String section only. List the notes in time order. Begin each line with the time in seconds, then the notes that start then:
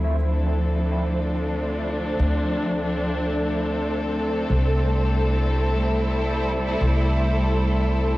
Already playing: F3 E4
0.23 A3 C4 D4
0.27 A4
4.50 G3
5.23 E4